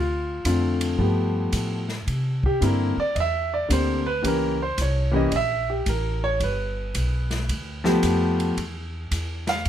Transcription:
0.00 0.43 D2 medium
0.00 0.45 F4 medium
0.45 0.97 F2 medium
0.45 0.98 D3 medium
0.45 0.97 A3 medium
0.45 0.98 C4 medium
0.45 0.98 F4 medium
0.45 kick soft
0.45 hi-hat pedal medium
0.45 ride medium
0.81 ride medium
0.98 1.51 G2 medium
0.98 1.82 F3 medium
0.98 1.82 A3 medium
0.98 1.82 B3 medium
0.98 1.83 G4 medium
0.98 kick soft
1.53 2.05 A2 medium
1.53 kick soft
1.53 hi-hat pedal medium
1.53 ride medium
1.89 snare soft
2.07 2.60 C3 medium
2.07 kick soft
2.07 ride medium
2.43 2.62 G4 medium
2.43 kick medium
2.61 2.95 G2 medium
2.61 2.94 D3 medium
2.61 2.94 A#3 medium
2.61 2.94 C4 medium
2.61 2.95 E4 medium
2.61 kick soft
2.61 hi-hat pedal medium
2.61 ride medium
2.66 2.99 A#4 medium
2.97 3.16 D5 loud
2.97 muted upright bass stroke soft
3.15 3.68 E2 medium
3.15 3.19 D#5 medium
3.15 kick soft
3.15 ride medium
3.20 3.53 E5 loud
3.54 3.70 D5 medium
3.69 4.22 D2 medium
3.69 4.02 D3 medium
3.69 4.02 A#3 soft
3.69 4.02 C4 medium
3.69 4.03 G4 medium
3.69 kick soft
3.69 hi-hat pedal medium
3.69 ride medium
3.73 4.06 C5 medium
4.06 4.24 B4 loud
4.22 4.76 C#2 medium
4.22 4.56 E3 medium
4.22 4.56 A#3 medium
4.22 4.56 C#4 medium
4.22 4.56 G4 medium
4.22 kick soft
4.22 ride medium
4.27 4.61 A#4 medium
4.62 4.79 C5 medium
4.78 5.30 C2 medium
4.78 5.15 C#5 medium
4.78 kick soft
4.78 hi-hat pedal medium
4.78 ride medium
5.12 5.29 E3 medium
5.12 5.29 A#3 medium
5.12 5.30 C#4 medium
5.12 5.30 G4 medium
5.16 5.30 D#5 medium
5.31 5.85 A#1 medium
5.31 5.35 D#5 medium
5.31 kick soft
5.31 ride medium
5.36 5.69 E5 loud
5.70 5.87 G4 medium
5.86 6.39 A1 medium
5.86 6.23 A#4 medium
5.86 kick soft
5.86 hi-hat pedal medium
5.86 ride medium
6.24 6.41 C#5 loud
6.40 6.93 G1 medium
6.40 8.01 B4 medium
6.40 kick soft
6.40 ride medium
6.95 7.47 B1 medium
6.95 kick soft
6.95 hi-hat pedal medium
6.95 ride medium
7.31 snare medium
7.31 ride soft
7.49 8.01 D2 medium
7.49 kick soft
7.49 ride medium
7.84 8.53 F3 medium
7.84 8.54 A3 medium
7.84 8.54 B3 medium
7.84 8.54 G4 medium
7.84 snare medium
8.03 8.56 F2 medium
8.03 kick soft
8.03 hi-hat pedal medium
8.03 ride medium
8.40 ride soft
8.57 9.10 E2 medium
8.57 kick soft
8.57 ride medium
9.11 9.64 E2 medium
9.11 kick soft
9.11 hi-hat pedal medium
9.11 ride medium
9.47 9.69 F5 medium
9.47 snare medium
9.47 ride soft
9.65 9.69 G#2 medium
9.65 kick soft
9.65 ride medium

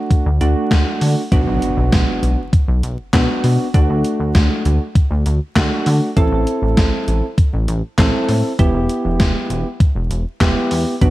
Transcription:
0.00 0.29 A3 medium
0.00 0.29 D4 medium
0.00 0.29 F#4 medium
0.11 kick loud
0.11 closed hi-hat medium
0.26 0.40 D2 loud
0.41 0.55 D2 loud
0.41 1.22 A3 medium
0.41 1.22 D4 medium
0.41 1.22 F#4 loud
0.41 closed hi-hat medium
0.71 0.85 D2 loud
0.71 kick loud
0.71 snare loud
0.71 closed hi-hat medium
1.01 1.15 D3 loud
1.01 open hi-hat medium
1.32 1.46 B1 loud
1.32 2.40 B3 medium
1.32 2.40 D4 medium
1.32 2.40 F#4 loud
1.32 kick loud
1.32 closed hi-hat medium
1.32 impact medium
1.47 1.61 B1 loud
1.62 closed hi-hat medium
1.77 1.91 B1 loud
1.92 2.06 B1 loud
1.92 kick loud
1.92 snare loud
1.92 closed hi-hat medium
2.23 2.37 B1 loud
2.23 closed hi-hat medium
2.53 kick loud
2.53 closed hi-hat medium
2.68 2.82 B1 loud
2.83 2.97 B1 loud
2.83 closed hi-hat medium
3.13 3.27 B1 loud
3.13 3.68 B3 medium
3.13 3.68 D4 medium
3.13 3.68 F#4 loud
3.13 kick loud
3.13 snare loud
3.13 clap medium
3.13 closed hi-hat medium
3.44 3.58 B2 loud
3.44 open hi-hat medium
3.74 3.88 D2 loud
3.74 4.82 A3 medium
3.74 4.82 D4 medium
3.74 4.82 F#4 medium
3.74 kick loud
3.74 closed hi-hat medium
3.89 4.03 D2 loud
4.04 closed hi-hat medium
4.20 4.34 D2 medium
4.35 4.49 D2 loud
4.35 kick loud
4.35 snare loud
4.35 closed hi-hat medium
4.65 4.79 D2 loud
4.65 closed hi-hat medium
4.95 kick loud
4.95 closed hi-hat medium
5.11 5.24 D2 loud
5.26 5.40 D2 loud
5.26 closed hi-hat medium
5.56 5.70 D2 loud
5.56 6.10 A3 medium
5.56 6.10 D4 medium
5.56 6.10 F#4 loud
5.56 kick loud
5.56 snare loud
5.56 clap medium
5.56 closed hi-hat medium
5.86 6.00 D3 medium
5.86 open hi-hat medium
6.17 6.30 A1 loud
6.17 7.25 C4 medium
6.17 7.25 E4 medium
6.17 7.25 A4 loud
6.17 kick loud
6.17 closed hi-hat medium
6.32 6.46 A1 loud
6.47 closed hi-hat medium
6.62 6.76 A1 loud
6.77 6.91 A1 loud
6.77 kick loud
6.77 snare loud
6.77 closed hi-hat medium
7.08 7.21 A1 loud
7.08 closed hi-hat medium
7.38 kick loud
7.38 closed hi-hat medium
7.53 7.67 A1 loud
7.68 7.82 A1 loud
7.68 closed hi-hat medium
7.98 8.12 A1 loud
7.98 8.52 C4 medium
7.98 8.52 E4 medium
7.98 8.52 A4 loud
7.98 kick loud
7.98 snare loud
7.98 clap medium
7.98 closed hi-hat medium
8.29 8.43 A2 loud
8.29 open hi-hat medium
8.59 8.73 E1 loud
8.59 9.67 B3 medium
8.59 9.67 E4 medium
8.59 9.67 G4 medium
8.59 kick loud
8.59 closed hi-hat medium
8.74 8.88 E1 loud
8.89 closed hi-hat medium
9.05 9.18 E1 loud
9.20 9.34 E1 loud
9.20 kick loud
9.20 snare loud
9.20 closed hi-hat medium
9.50 9.64 E1 loud
9.50 closed hi-hat medium
9.80 kick loud
9.80 closed hi-hat medium
9.95 10.09 E1 loud
10.11 10.24 E1 loud
10.11 closed hi-hat medium
10.41 10.55 E1 loud
10.41 10.95 B3 medium
10.41 10.95 E4 medium
10.41 10.95 G4 loud
10.41 kick loud
10.41 snare loud
10.41 clap medium
10.41 closed hi-hat medium
10.71 10.85 E2 loud
10.71 open hi-hat medium
11.01 11.10 B1 loud
11.01 11.10 B3 medium
11.01 11.10 D4 medium
11.01 11.10 F#4 medium
11.01 kick loud
11.01 closed hi-hat medium

